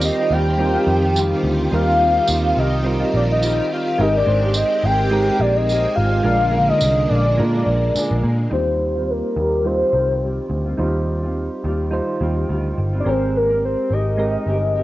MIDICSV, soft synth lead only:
0, 0, Header, 1, 2, 480
1, 0, Start_track
1, 0, Key_signature, -3, "major"
1, 0, Tempo, 566572
1, 1464, Time_signature, 4, 2, 24, 8
1, 12567, End_track
2, 0, Start_track
2, 0, Title_t, "Soft synth lead"
2, 0, Program_c, 0, 80
2, 39, Note_on_c, 0, 75, 103
2, 272, Note_on_c, 0, 79, 103
2, 284, Note_off_c, 0, 75, 0
2, 988, Note_off_c, 0, 79, 0
2, 1479, Note_on_c, 0, 77, 108
2, 2189, Note_on_c, 0, 75, 100
2, 2201, Note_off_c, 0, 77, 0
2, 2666, Note_off_c, 0, 75, 0
2, 2681, Note_on_c, 0, 74, 92
2, 2736, Note_off_c, 0, 74, 0
2, 2811, Note_on_c, 0, 75, 97
2, 3127, Note_off_c, 0, 75, 0
2, 3160, Note_on_c, 0, 77, 96
2, 3393, Note_on_c, 0, 75, 109
2, 3406, Note_off_c, 0, 77, 0
2, 3520, Note_off_c, 0, 75, 0
2, 3534, Note_on_c, 0, 74, 111
2, 3868, Note_on_c, 0, 75, 103
2, 3881, Note_off_c, 0, 74, 0
2, 4108, Note_on_c, 0, 79, 124
2, 4120, Note_off_c, 0, 75, 0
2, 4576, Note_on_c, 0, 74, 103
2, 4589, Note_off_c, 0, 79, 0
2, 4707, Note_on_c, 0, 75, 102
2, 4720, Note_off_c, 0, 74, 0
2, 5041, Note_off_c, 0, 75, 0
2, 5046, Note_on_c, 0, 77, 120
2, 5664, Note_on_c, 0, 75, 104
2, 5677, Note_off_c, 0, 77, 0
2, 6008, Note_on_c, 0, 74, 83
2, 6020, Note_off_c, 0, 75, 0
2, 6974, Note_off_c, 0, 74, 0
2, 7224, Note_on_c, 0, 72, 106
2, 7711, Note_on_c, 0, 70, 91
2, 7724, Note_off_c, 0, 72, 0
2, 8180, Note_on_c, 0, 72, 82
2, 8193, Note_off_c, 0, 70, 0
2, 8900, Note_off_c, 0, 72, 0
2, 11013, Note_on_c, 0, 74, 68
2, 11088, Note_on_c, 0, 72, 104
2, 11100, Note_off_c, 0, 74, 0
2, 11323, Note_on_c, 0, 70, 94
2, 11335, Note_off_c, 0, 72, 0
2, 11552, Note_off_c, 0, 70, 0
2, 11565, Note_on_c, 0, 72, 87
2, 11801, Note_on_c, 0, 75, 98
2, 11814, Note_off_c, 0, 72, 0
2, 12567, Note_off_c, 0, 75, 0
2, 12567, End_track
0, 0, End_of_file